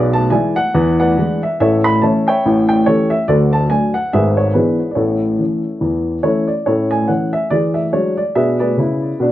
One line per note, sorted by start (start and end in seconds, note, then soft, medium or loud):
0.00 0.26 B1 medium
0.00 0.26 B2 medium
0.00 0.13 G#4 medium
0.00 0.14 B4 medium
0.00 0.15 D5 medium
0.13 0.31 A5 medium
0.30 0.54 E3 soft
0.30 0.55 G#3 soft
0.30 0.55 E4 soft
0.30 0.55 D5 medium
0.30 0.55 E5 medium
0.30 0.56 G#5 medium
0.56 0.98 F#5 medium
0.74 1.10 E2 medium
0.74 1.10 E3 medium
1.00 1.39 B4 medium
1.00 1.39 D5 medium
1.00 1.42 F#5 medium
1.18 1.41 E3 medium
1.18 1.41 G#3 soft
1.18 1.41 D4 soft
1.43 1.59 E5 medium
1.60 1.96 A1 medium
1.60 1.96 A2 medium
1.60 1.83 A4 medium
1.60 1.83 C#5 medium
1.60 1.84 E5 medium
1.84 2.02 B5 medium
2.02 2.25 E3 soft
2.02 2.26 A3 soft
2.02 2.26 C#4 soft
2.02 2.25 C#5 medium
2.02 2.25 E5 soft
2.02 2.26 A5 medium
2.28 2.67 C#5 medium
2.28 2.67 E5 medium
2.28 2.67 G5 medium
2.46 2.81 A1 medium
2.46 2.81 A2 medium
2.69 2.86 G5 medium
2.86 3.10 E3 soft
2.86 3.10 A3 soft
2.86 3.10 C#4 soft
2.86 3.10 G4 medium
2.86 3.10 A4 medium
2.86 3.11 C#5 medium
3.10 3.28 E5 medium
3.28 3.64 D2 medium
3.28 3.64 D3 medium
3.28 3.52 F#4 medium
3.28 3.52 A4 medium
3.28 3.53 D5 medium
3.53 3.70 A5 medium
3.70 3.93 F#3 soft
3.70 3.94 A3 soft
3.70 3.93 D4 soft
3.70 3.95 G#5 medium
3.94 4.12 F#5 medium
4.13 4.49 G#1 medium
4.13 4.49 G#2 medium
4.13 4.37 G#4 medium
4.13 4.37 B4 medium
4.13 4.38 E5 medium
4.37 4.55 C#5 medium
4.54 4.78 E3 soft
4.54 4.78 B3 soft
4.54 4.79 D4 soft
4.54 4.89 E4 soft
4.54 4.89 G#4 soft
4.54 4.91 B4 medium
4.91 4.97 D5 soft
4.95 5.32 A1 medium
4.95 5.33 A2 medium
4.95 6.23 E4 soft
4.95 6.23 A4 soft
4.95 6.22 C#5 soft
5.39 5.62 E3 soft
5.39 5.63 A3 soft
5.39 5.63 C#4 soft
5.81 6.18 E2 soft
5.81 6.17 E3 medium
6.23 6.47 E3 soft
6.23 6.47 A3 soft
6.23 6.48 C#4 soft
6.23 6.48 E4 soft
6.23 6.47 A4 soft
6.23 6.49 C#5 medium
6.48 6.66 D5 medium
6.66 7.03 A2 medium
6.66 6.91 C#4 soft
6.66 6.90 E4 soft
6.66 6.90 A4 soft
6.66 6.91 C#5 medium
6.91 7.09 G#5 medium
7.08 7.32 E3 soft
7.08 7.32 A3 soft
7.08 7.32 C#4 soft
7.08 7.33 F#5 medium
7.33 7.51 E5 medium
7.50 7.87 E3 medium
7.50 7.75 G#4 soft
7.50 7.76 D5 medium
7.74 7.93 E5 medium
7.93 8.16 F#3 soft
7.93 8.16 G#3 soft
7.93 8.17 D4 soft
7.93 8.18 C#5 medium
8.17 8.35 D5 medium
8.35 8.69 B2 medium
8.35 8.70 D4 soft
8.35 8.59 G#4 medium
8.35 8.58 B4 medium
8.35 8.60 E5 medium
8.60 9.32 G#4 soft
8.60 9.32 B4 medium
8.60 9.32 D5 medium
8.77 9.11 C#3 soft
8.77 9.13 E4 medium
9.20 9.32 B2 medium
9.20 9.32 D4 medium